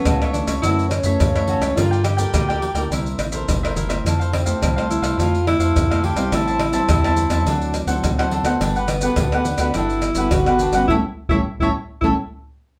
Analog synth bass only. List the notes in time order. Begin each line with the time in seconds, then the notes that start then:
0.06 C#2
0.47 C#2
0.63 F#2
1.04 F#2
1.20 F#2
1.60 C#2
1.77 G2
2.33 D2
2.74 D2
2.90 C2
3.18 A1
3.48 G1
3.75 F#1
4.05 F2
4.61 C2
5.02 C2
5.17 F2
5.59 F2
5.75 F2
6.15 C2
6.32 A1
6.89 E2
7.30 E2
7.45 D2
7.87 D2
8.03 D2
8.43 D2
8.60 G1
9.17 D2
9.58 D2
9.74 G1
10.15 G1
10.31 G1
10.72 G1
10.88 A1
11.29 A1
11.60 A1
12.03 A1